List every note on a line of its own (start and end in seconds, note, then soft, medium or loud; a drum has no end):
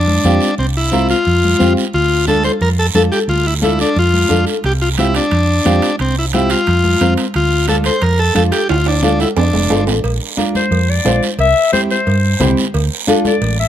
0.00 0.17 F2 medium
0.00 0.55 D4 medium
0.08 high conga medium
0.24 0.38 F2 medium
0.24 0.48 C4 medium
0.24 0.49 F4 medium
0.24 0.49 G4 medium
0.24 high conga medium
0.24 short guiro medium
0.41 short guiro medium
0.58 1.13 C2 medium
0.58 0.67 C4 medium
0.58 long guiro medium
0.77 1.08 E4 medium
0.91 1.16 C4 medium
0.91 1.16 F4 medium
0.91 1.16 A#4 medium
0.91 high conga medium
0.91 short guiro medium
1.09 1.73 F4 medium
1.09 short guiro medium
1.25 1.53 F2 medium
1.25 long guiro medium
1.44 high conga medium
1.59 1.74 F2 medium
1.59 1.83 C4 medium
1.59 1.84 F4 medium
1.59 1.84 G4 medium
1.59 high conga medium
1.59 short guiro medium
1.77 short guiro medium
1.93 2.48 D2 medium
1.93 2.26 F4 medium
1.93 long guiro medium
2.27 2.51 D4 medium
2.27 2.51 F4 medium
2.27 2.43 A4 medium
2.27 2.51 A4 medium
2.27 high conga medium
2.27 short guiro medium
2.44 2.52 C5 loud
2.44 short guiro medium
2.61 2.88 F2 medium
2.61 2.69 A#4 loud
2.61 long guiro medium
2.79 2.87 A4 medium
2.95 3.08 F2 medium
2.95 3.19 D4 medium
2.95 3.19 F4 medium
2.95 3.03 A4 medium
2.95 3.19 A4 medium
2.95 high conga medium
2.95 short guiro medium
3.12 3.19 G4 medium
3.12 short guiro medium
3.28 3.82 D2 medium
3.28 3.47 F4 medium
3.28 long guiro medium
3.47 3.54 E4 medium
3.61 3.86 D4 medium
3.61 3.79 E4 medium
3.61 3.86 F4 medium
3.61 3.86 A4 medium
3.61 high conga medium
3.61 short guiro medium
3.79 3.98 D4 medium
3.79 short guiro medium
3.96 4.23 F2 medium
3.96 4.45 F4 medium
3.96 long guiro medium
4.14 high conga medium
4.29 4.44 F2 medium
4.29 4.53 D4 medium
4.29 4.53 F4 medium
4.29 4.54 A4 medium
4.29 high conga medium
4.29 short guiro medium
4.47 short guiro medium
4.64 5.18 C2 medium
4.64 4.73 G4 medium
4.64 high timbale medium
4.64 long guiro medium
4.82 4.89 F4 medium
4.97 5.22 C4 medium
4.97 5.14 E4 medium
4.97 5.22 F4 medium
4.97 5.22 G4 medium
4.97 high conga medium
4.97 high timbale medium
4.97 short guiro medium
5.15 5.96 D4 medium
5.15 high timbale medium
5.15 short guiro medium
5.31 5.59 F2 medium
5.31 high timbale medium
5.31 long guiro medium
5.65 5.79 F2 medium
5.65 5.89 C4 medium
5.65 5.89 F4 medium
5.65 5.89 G4 medium
5.65 high conga medium
5.65 high timbale medium
5.65 short guiro medium
5.82 high timbale medium
5.82 short guiro medium
5.99 6.54 C2 medium
5.99 6.16 C4 medium
5.99 high timbale medium
5.99 long guiro medium
6.19 6.26 E4 medium
6.33 6.57 C4 medium
6.33 6.50 E4 medium
6.33 6.57 F4 medium
6.33 6.57 G4 medium
6.33 high conga medium
6.33 high timbale medium
6.33 short guiro medium
6.50 7.14 F4 medium
6.50 high timbale medium
6.50 short guiro medium
6.67 6.94 F2 medium
6.67 high timbale medium
6.67 long guiro medium
6.84 high conga medium
7.00 7.15 F2 medium
7.00 7.24 C4 medium
7.00 7.25 F4 medium
7.00 7.25 A#4 medium
7.00 high conga medium
7.00 high timbale medium
7.00 short guiro medium
7.17 high timbale medium
7.17 short guiro medium
7.34 7.89 D2 medium
7.34 7.67 F4 medium
7.34 high timbale medium
7.34 long guiro medium
7.68 7.92 D4 medium
7.68 7.92 F4 medium
7.68 7.92 A4 medium
7.68 7.77 A4 medium
7.68 high conga medium
7.68 high timbale medium
7.68 short guiro medium
7.84 8.03 C5 medium
7.84 high timbale medium
7.84 short guiro medium
8.02 8.29 F2 medium
8.02 8.20 A#4 medium
8.02 high timbale medium
8.02 long guiro medium
8.19 8.34 A4 medium
8.35 8.50 F2 medium
8.35 8.59 D4 medium
8.35 8.59 F4 medium
8.35 8.43 A4 medium
8.35 8.59 A4 medium
8.35 high conga medium
8.35 high timbale medium
8.35 short guiro medium
8.52 8.68 G4 medium
8.52 high timbale medium
8.52 short guiro medium
8.69 9.24 D2 medium
8.69 8.87 F4 medium
8.69 high timbale medium
8.69 long guiro medium
8.86 9.03 D4 medium
8.86 high timbale medium
9.02 9.26 D4 medium
9.02 9.20 D4 medium
9.02 9.27 F4 medium
9.02 9.27 A4 medium
9.02 high conga medium
9.02 high timbale medium
9.02 short guiro medium
9.20 9.29 E4 medium
9.20 high timbale medium
9.20 short guiro medium
9.37 9.50 F2 medium
9.37 9.84 D4 medium
9.37 low timbale medium
9.37 long guiro medium
9.54 9.69 F1 medium
9.54 high conga medium
9.54 low timbale medium
9.70 9.86 G1 medium
9.70 9.94 D4 medium
9.70 9.94 F4 medium
9.70 9.94 A4 medium
9.70 high conga medium
9.70 low timbale medium
9.70 short guiro medium
9.87 10.03 A1 medium
9.87 low timbale medium
9.87 short guiro medium
10.04 10.18 A#1 loud
10.04 cowbell loud
10.04 long guiro medium
10.37 10.61 D4 medium
10.37 10.61 F4 medium
10.37 10.62 A#4 medium
10.37 cowbell medium
10.37 high conga medium
10.37 short guiro medium
10.55 10.91 C5 medium
10.55 high conga medium
10.55 short guiro medium
10.71 10.98 F2 medium
10.71 cowbell medium
10.71 long guiro medium
10.89 11.23 D5 medium
11.04 11.19 A#1 medium
11.04 11.29 D4 medium
11.04 11.29 F4 medium
11.04 11.29 C5 medium
11.04 cowbell medium
11.04 high conga medium
11.04 low timbale medium
11.04 short guiro medium
11.23 short guiro medium
11.38 11.52 C2 loud
11.38 11.71 E5 loud
11.38 cowbell medium
11.38 long guiro medium
11.72 11.96 C4 medium
11.72 11.97 E4 medium
11.72 11.97 G4 medium
11.72 11.81 C5 medium
11.72 cowbell medium
11.72 high conga medium
11.72 short guiro medium
11.91 12.54 C5 medium
11.91 short guiro medium
12.07 12.34 G2 loud
12.07 cowbell medium
12.07 long guiro medium
12.39 12.54 C2 medium
12.39 12.64 C4 medium
12.39 12.64 E4 medium
12.39 12.64 G4 medium
12.39 cowbell medium
12.39 high conga medium
12.39 low conga medium
12.39 low timbale medium
12.39 short guiro medium
12.57 short guiro medium
12.74 12.88 D2 loud
12.74 cowbell medium
12.74 long guiro medium
13.07 13.31 D4 medium
13.07 13.32 F4 medium
13.07 13.32 A4 medium
13.07 cowbell medium
13.07 high conga medium
13.07 short guiro medium
13.25 13.57 D5 medium
13.25 high conga medium
13.25 short guiro medium
13.41 13.68 A1 medium
13.41 cowbell medium
13.41 long guiro medium
13.60 13.68 E5 medium